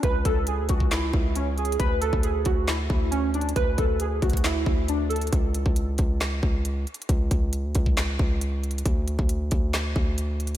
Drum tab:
HH |x-----------x-----------x-----------x-----------x-----------------------x-----------x---x---x---|x-----------x-----------x-----------x-----------x-----------------------x-----------x---x---x---|x-----------x-----------x-----------x---x---x---x-----------------------x-----------x--x--x--x--|x-----------x-----------x-----------x-----------x-----------------------x-----------x---x---x---|
CP |------------------------------------------------x-----------------------------------------------|------------------------------------------------x-----------------------------------------------|------------------------------------------------x-----------------------------------------------|------------------------------------------------x-----------------------------------------------|
SD |------------------------------------------------o-----------------------------------------------|------------------------------------------------o-----------------------------------------------|------------------------------------------------o-----------------------------------------------|------------------------------------------------o-----------------------------------------------|
BD |o-----------o-----------------------o-----o-----------------o-----------------------------------|o-----------------o-----------------o-----------------------o-----------------------------------|o-----------o-----------------------o-----o-----------------o-----------------------------------|o-----------------o-----------------o-----------------------o-----------------------------------|

HH |x-----------x-----------x-----------x-----------x-----------------------x-----------x---x---x---|x-----------x-----------x-----------x-----------x-----------------------x-----------x---x-------|
CP |------------------------------------------------x-----------------------------------------------|------------------------------------------------x-----------------------------------------------|
SD |------------------------------------------------o-----------------------------------------------|------------------------------------------------o-----------------------------------------------|
BD |o-----------o-----------------------o-----o-----------------o-----------------------------------|o-----------------o-----------------o-----------------------o-----------------------------------|